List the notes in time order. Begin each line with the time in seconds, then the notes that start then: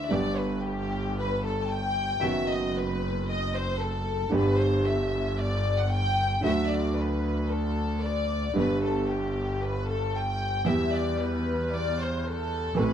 0.08 G1 G2 D3 G3 B3 G4 D5
0.37 B4
0.64 G4
1.18 B4
1.44 A4
1.62 A5
1.70 G5
2.20 F#1 F#2 D#3 F#3 B3 F#4 E5
2.49 D#5
2.76 B4
3.28 D#5
3.54 C5
3.80 A4
4.29 G1 G2 D3 G3 B3 B4
4.34 G4
4.60 C5
4.86 E5
5.38 D5
5.78 F#5
5.91 G5
6.42 D2 D3 F#3 A3 F#4 E5
6.70 D5
6.96 B4
7.50 A4
8.02 D5
8.54 G1 G2 D3 G3 B3 B4
8.58 G4
8.83 A4
9.10 G4
9.63 B4
9.89 A4
10.15 G5
10.65 E2 E3 G3 B3 G4 E5
10.94 D5
11.21 B4
11.73 D5
12.00 C5
12.27 A4
12.75 A1 A2 E3 A3 C4 A4 B4